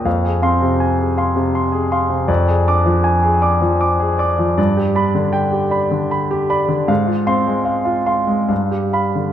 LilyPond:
<<
  \new Staff \with { instrumentName = "Grand piano" } { \time 3/4 \key f \dorian \tempo 4 = 78 f''16 aes'16 <f'' c'''>16 c16 aes''16 aes'16 <f'' c'''>16 c16 c'''16 aes'16 <f'' c'''>16 c16 | d''16 aes'16 <d'' d'''>16 f16 aes''16 aes'16 <d'' d'''>16 f16 d'''16 aes'16 <d'' d'''>16 f16 | d''16 g'16 <d'' b''>16 d16 g''16 g'16 <d'' b''>16 d16 b''16 g'16 <d'' b''>16 d16 | f''16 f'16 <f'' c'''>16 aes16 f''16 f'16 <f'' c'''>16 aes16 f''16 g'16 <f'' b''>16 d16 | }
  \new Staff \with { instrumentName = "Grand piano" } { \clef bass \time 3/4 \key f \dorian f,8 c'4 r4. | f,8 d'4 r4. | g,8 d'4 r4. | aes,8 c'4 r8 g,4 | }
>>